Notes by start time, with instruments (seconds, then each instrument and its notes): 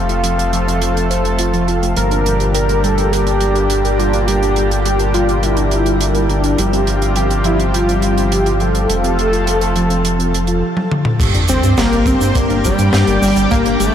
Already playing: analog synth bass F1, analog synth pad C3 F3 A3 F4 A4, analog polysynth F3 C4 F4 A4
0.09 synth arpeggio sound F4, closed hi-hat
0.24 synth arpeggio sound F3, closed hi-hat
0.38 synth arpeggio sound A4, closed hi-hat
0.53 synth arpeggio sound F3, analog polysynth F3 C4 F4 A4, closed hi-hat
0.67 synth arpeggio sound C4, closed hi-hat
0.82 synth arpeggio sound F3, closed hi-hat
0.96 synth arpeggio sound C4, closed hi-hat
1.10 analog polysynth F3 C4 F4 C5, synth arpeggio sound C5, closed hi-hat
1.25 synth arpeggio sound A3, closed hi-hat
1.39 synth arpeggio sound F4, closed hi-hat
1.54 synth arpeggio sound F3, closed hi-hat
1.68 analog polysynth C4 F4 A4, synth arpeggio sound F4, closed hi-hat
1.83 synth arpeggio sound A3, closed hi-hat
1.96 analog synth bass G1, analog synth pad A#2 D3 G3 D4 G4, synth arpeggio sound G3, analog polysynth G3 D4 G4 A#4, analog synth lead A#4, closed hi-hat
2.11 synth arpeggio sound D4, closed hi-hat
2.26 synth arpeggio sound G3, closed hi-hat
2.40 synth arpeggio sound G4, closed hi-hat
2.54 synth arpeggio sound G3, analog synth lead A#4, closed hi-hat
2.69 synth arpeggio sound A#4, closed hi-hat
2.84 analog polysynth G3 D4 G4 A#4, synth arpeggio sound G3, analog synth lead A4, closed hi-hat
2.98 synth arpeggio sound D4, closed hi-hat
3.12 synth arpeggio sound G3, analog synth lead G4, closed hi-hat
3.27 synth arpeggio sound D4, closed hi-hat
3.40 synth arpeggio sound G3, closed hi-hat
3.55 synth arpeggio sound G4, closed hi-hat
3.70 synth arpeggio sound G3, closed hi-hat
3.85 synth arpeggio sound A#4, closed hi-hat
3.99 synth arpeggio sound G3, analog synth lead F4, closed hi-hat
4.13 synth arpeggio sound D4, closed hi-hat
4.28 analog polysynth G3 D4 G4 A#4, synth arpeggio sound G3, analog synth lead G4, closed hi-hat
4.42 synth arpeggio sound D4, closed hi-hat
4.56 synth arpeggio sound G3, closed hi-hat
4.71 synth arpeggio sound G4, closed hi-hat
4.86 synth arpeggio sound G3, analog synth lead G4, closed hi-hat
4.99 synth arpeggio sound A#4, closed hi-hat
5.14 analog polysynth G3 D4 G4 A#4, synth arpeggio sound G3, analog synth lead F4, closed hi-hat
5.29 synth arpeggio sound D4, closed hi-hat
5.43 synth arpeggio sound G3, analog synth lead E4, closed hi-hat
5.57 synth arpeggio sound D4, closed hi-hat
5.71 synth arpeggio sound G3, closed hi-hat
5.86 synth arpeggio sound G4, closed hi-hat
6.01 synth arpeggio sound G3, closed hi-hat
6.15 synth arpeggio sound A#4, closed hi-hat
6.29 synth arpeggio sound G3, analog synth lead D4, closed hi-hat
6.44 synth arpeggio sound D4, closed hi-hat
6.58 analog synth bass G1, analog synth pad C3 F3 F4 G4, synth arpeggio sound F3, analog polysynth G3 C4 F4 G4, analog synth lead G4, closed hi-hat
6.73 synth arpeggio sound C4, closed hi-hat
6.87 synth arpeggio sound F3, closed hi-hat
7.02 synth arpeggio sound F4, closed hi-hat
7.16 synth arpeggio sound F3, analog synth lead G4, closed hi-hat
7.31 synth arpeggio sound G4, closed hi-hat
7.44 synth arpeggio sound F3, analog polysynth G3 C4 F4 G4, analog synth lead E4, closed hi-hat
7.59 synth arpeggio sound C4, closed hi-hat
7.74 synth arpeggio sound F3, analog synth lead F4, closed hi-hat
7.88 synth arpeggio sound C4, closed hi-hat
8.02 synth arpeggio sound F3, analog synth lead F4, closed hi-hat
8.17 synth arpeggio sound F4, closed hi-hat
8.32 synth arpeggio sound F3, analog synth lead G4, closed hi-hat
8.46 synth arpeggio sound G4, closed hi-hat
8.60 synth arpeggio sound F3, analog synth lead A4, closed hi-hat
8.75 synth arpeggio sound C4, closed hi-hat
8.89 analog synth bass F1, analog synth pad F3 A3 F4 A4, synth arpeggio sound F3, analog polysynth F3 C4 F4 A4, closed hi-hat
9.04 synth arpeggio sound C4, closed hi-hat
9.18 synth arpeggio sound F3, closed hi-hat
9.32 synth arpeggio sound F4, closed hi-hat
9.47 synth arpeggio sound F3, closed hi-hat
9.61 synth arpeggio sound A4, closed hi-hat
9.76 synth arpeggio sound F3, analog polysynth F3 C4 F4 A4, closed hi-hat
9.90 synth arpeggio sound C4, closed hi-hat
10.05 synth arpeggio sound F3, closed hi-hat
10.19 synth arpeggio sound C4, closed hi-hat
10.33 synth arpeggio sound F3, closed hi-hat
10.47 synth arpeggio sound F4, closed hi-hat
10.77 high tom
10.92 mid tom
11.05 mid tom
11.20 analog synth bass G1, analog polysynth G2 A#3 D4 G4, synth arpeggio sound G3, analog synth pad G4 D5 G5 D6, kick, closed hi-hat, crash, sub drop, shaker
11.34 analog synth bass G1, synth arpeggio sound D4, closed hi-hat
11.48 analog synth bass G1, synth arpeggio sound G3, analog synth lead C4, string machine C5, closed hi-hat, shaker
11.63 analog synth bass G2, synth arpeggio sound G4, closed hi-hat, shaker
11.77 analog synth bass G1, synth arpeggio sound G3, analog synth lead A#3, string machine A#4, snare, closed hi-hat, shaker
11.92 analog synth bass G1, synth arpeggio sound A#4, closed hi-hat
12.06 analog synth bass G1, analog polysynth G2 A#3 D4 G4, synth arpeggio sound G3, analog synth lead C4, string machine C5, kick, closed hi-hat, shaker
12.21 analog synth bass G2, synth arpeggio sound D4, closed hi-hat, shaker
12.35 analog synth bass G1, synth arpeggio sound G3, analog synth lead A#3, string machine A#4, kick, closed hi-hat, shaker
12.50 analog synth bass G1, synth arpeggio sound D4, closed hi-hat
12.64 analog synth bass G1, synth arpeggio sound G3, analog synth lead G3, string machine G4, kick, closed hi-hat, shaker
12.79 analog synth bass G2, synth arpeggio sound G4, closed hi-hat, shaker
12.93 analog synth bass G2, synth arpeggio sound G3, snare, closed hi-hat, shaker
13.07 analog synth bass G1, synth arpeggio sound A#4, closed hi-hat
13.22 analog synth bass G1, synth arpeggio sound G3, analog synth lead G3, string machine G4, open hi-hat, shaker
13.36 analog synth bass G1, synth arpeggio sound D4, closed hi-hat, shaker
13.51 analog synth bass G1, analog polysynth G2 G3 D4 G4, synth arpeggio sound G3, analog synth lead A#3, string machine A#4, kick, closed hi-hat, shaker
13.65 analog synth bass G1, synth arpeggio sound D4, closed hi-hat
13.80 analog synth bass G1, synth arpeggio sound G3, analog synth lead A3, string machine A4, closed hi-hat, shaker